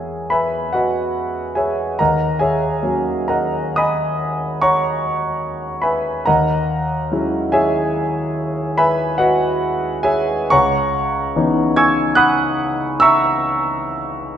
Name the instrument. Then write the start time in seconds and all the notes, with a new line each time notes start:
grand piano
Already playing: F#3 G#3 C#4 F#4 G#4 C#5 E5 G#5
0.30 B4 E5 G#5 B5
0.73 F#4 B4 D#5 F#5
1.55 G#4 C#5 E5 G#5
1.99 D#2 A#4 D#5 F#5 A#5
2.39 G#4 C#5 E5 G#5
2.83 F#3 A#3 C#4 F#4
3.28 A#4 D#5 F#5 A#5
3.76 D#5 G#5 B5 D#6
4.62 C#5 F#5 A#5 C#6
5.82 B4 E5 G#5 B5
6.26 D#2 A#4 D#5 F#5 A#5
7.12 F#3 G#3 C#4 E4
7.52 G#4 C#5 E5 G#5
8.78 B4 E5 G#5 B5
9.18 F#4 B4 D#5 F#5
10.03 G#4 C#5 E5 G#5
10.50 C#2 C#5 F#5 A#5 C#6
11.36 E3 B3 C#4 D#4
11.76 G#5 C#6 E6 G#6
12.15 F#5 B5 D#6 F#6
13.00 E5 A#5 C#6 E6